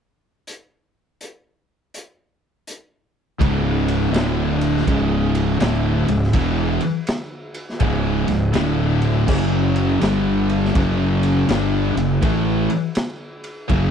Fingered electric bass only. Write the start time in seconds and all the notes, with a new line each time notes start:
3.40 C#1
4.12 D1
4.87 C#1
5.60 D1
6.08 C#1
6.34 E1
7.81 C#1
8.28 C#1
8.55 D1
9.28 F#1
10.01 G1
10.76 F#1
11.48 G1
11.95 F#1
12.22 A1
13.70 F#1